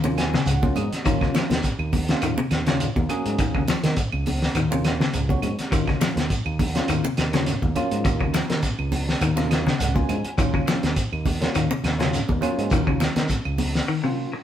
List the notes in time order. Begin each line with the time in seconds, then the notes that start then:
Already playing: D#2
0.04 C3 F#3 A#3 C#4 F4, high conga
0.17 G#5, snare, closed hi-hat, claves, shekere
0.34 C#3, snare, low conga
0.46 C#2 F#5, closed hi-hat, shekere
0.62 F#3 A#3 C#4 F4, kick, high conga
0.75 G#2 D#5, closed hi-hat, high conga, low conga, claves, shekere
0.91 muted fingered electric bass stroke, snare, closed hi-hat
1.05 D#2 D#3 F#3 A#3 C#4 F4, kick, closed hi-hat, shekere
1.21 C#3, kick, snare, claves
1.35 F3, snare, closed hi-hat, high conga, shekere
1.50 D#2, snare, closed hi-hat, high conga
1.63 kick, snare, closed hi-hat, shekere
1.79 D#2, claves
1.93 kick, open hi-hat, high conga, low conga, shekere
2.08 F#3 A#3 C#4 F4, snare, closed hi-hat
2.22 D#2 D#3, closed hi-hat, claves, shekere
2.38 C3, high conga
2.51 D#2, snare, closed hi-hat, claves, shekere
2.66 C#3 F#3 A#3 C#4 F4, snare, closed hi-hat, low conga
2.80 closed hi-hat, shekere
2.96 D#2, kick, high conga
3.09 F#3 A#3 C#4 G#4, closed hi-hat, low conga, claves, shekere
3.26 G#2, closed hi-hat
3.38 D#2 D#3, kick, closed hi-hat, shekere
3.55 C#3, kick, claves
3.68 F3, snare, closed hi-hat, high conga, shekere
3.83 D#3, snare, closed hi-hat, high conga
3.97 kick, closed hi-hat, shekere
4.12 C#2, claves
4.26 open hi-hat, high conga, low conga, shekere
4.42 snare
4.54 D#2 D#3, closed hi-hat, high conga, claves, shekere
4.70 C3 F#3 A#3 C#4 F4, high conga
4.84 snare, closed hi-hat, claves, shekere
5.00 C#3, snare, low conga
5.13 C#2, closed hi-hat, shekere
5.29 F#3 A#3 C#4 F#4, kick, high conga
5.42 G#2, closed hi-hat, high conga, low conga, claves, shekere
5.59 muted fingered electric bass stroke, snare, closed hi-hat
5.71 D#2 D#3 F#3 A#3 C#4 F4, kick, closed hi-hat, shekere
5.87 C#3, kick, snare, claves
6.01 F3, snare, closed hi-hat, high conga, shekere
6.16 D#2, snare, closed hi-hat
6.30 kick, closed hi-hat, shekere
6.45 D#2, claves
6.59 kick, open hi-hat, high conga, low conga, shekere
6.75 F#3 A#3 C#4 F4, snare, closed hi-hat
6.88 D#2 D#3, closed hi-hat, high conga, claves, shekere
7.04 C3, high conga
7.17 D#2, snare, closed hi-hat, claves, shekere
7.33 C#3 F#3 A#3 C#4 F4, snare, closed hi-hat, low conga
7.46 snare, closed hi-hat, shekere
7.62 D#2, kick, high conga
7.75 F#3 A#3 C#4 F4, closed hi-hat, high conga, low conga, claves, shekere
7.91 G#2, closed hi-hat
8.05 D#2, muted clean electric guitar stroke, kick, closed hi-hat, shekere
8.21 C#3, kick, claves
8.34 F3, snare, closed hi-hat, high conga, shekere
8.50 D#3, snare, closed hi-hat
8.63 kick, snare, closed hi-hat, shekere
8.78 C#2, claves
8.92 open hi-hat, high conga, low conga, shekere
9.09 snare
9.21 D#2 D#3, closed hi-hat, high conga, claves, shekere
9.36 C3 F#3 A#3 C#4 F4, snare, high conga
9.51 D#5, snare, closed hi-hat, claves, shekere
9.67 C#3, snare, low conga
9.79 C#2 F#5, snare, closed hi-hat, shekere
9.94 F#3 A#3 C#4 F4 G#5, kick, high conga
10.09 G#2, closed hi-hat, high conga, low conga, claves, shekere
10.24 muted fingered electric bass stroke, closed hi-hat
10.37 D#2 D#3 F#3 A#3 C#4 F4, kick, closed hi-hat, shekere
10.54 C#3, kick, claves
10.67 F3, snare, closed hi-hat, high conga, shekere
10.83 D#2, snare, closed hi-hat
10.96 kick, closed hi-hat, shekere
11.12 D#2, claves
11.26 kick, open hi-hat, high conga, low conga, shekere
11.40 F#3 A#3 C#4 F4, snare, closed hi-hat
11.55 D#2 D#3, closed hi-hat, claves, shekere
11.71 C3, high conga
11.84 D#2, snare, closed hi-hat, claves, shekere
11.98 C#3 F#3 A#3 C#4 F4, snare, closed hi-hat, low conga
12.13 snare, closed hi-hat, shekere
12.29 D#2, kick, high conga
12.41 F#3 A#3 C#4 F4, closed hi-hat, high conga, low conga, claves, shekere
12.58 G#2, closed hi-hat
12.70 D#2 D#3, kick, closed hi-hat, shekere
12.87 C#3, kick, claves
13.00 F3, snare, closed hi-hat, high conga, shekere
13.16 D#3, snare, closed hi-hat, high conga
13.28 kick, snare, closed hi-hat, shekere
13.45 C#2, claves
13.58 open hi-hat, high conga, low conga, shekere
13.75 snare
13.88 D#3
14.03 C3 F#3 A#3 C#4 F4
14.33 muted clean electric guitar stroke